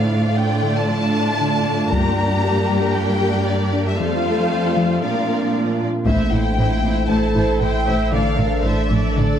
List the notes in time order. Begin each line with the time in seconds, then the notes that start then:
Already playing: A2 A3 D4 F4 D5 F5
0.37 D4 G5
0.63 D3
0.77 A5
0.89 F3 A5
1.14 D4
1.41 D3
1.67 A3
1.92 G2 G3 A#3 G4 A#4 A#5, taiko
2.44 G4
2.70 G3
2.95 A#3 G5
3.22 G4
3.47 G3 D5
3.73 D4
3.87 E5
3.99 F2 F3 A3 C4 F4 A4 C5 F5
4.51 F4
4.77 F3
5.03 A#2 F3 A#3 D4 A#4 D5 F5
5.29 A#4
5.55 A#3
5.80 F4
6.06 A1 A2 A3 E4 A4 C5 E5, taiko
6.31 A1 A2 E4 C5 G5
6.58 A1 A2 E4 C5
6.83 A1 A2 C4 E4 C5
7.09 A1 A2 A3 E4 A4 C5 A5
7.35 A1 A2 E4 C5
7.60 A1 A2 E4 A4 C5 G5
7.87 A1 A2 E4 A4 C5 E5
8.12 A1 A2 D3 D4 A4 D5 F5
8.38 A1 A2 A3 D4 A4 A#4
8.64 A1 A2 A3 D4 A4 C5 E5
8.90 A1 A2 F3 D4 A4 D5
9.16 A1 A2 D3 D4 A4 D5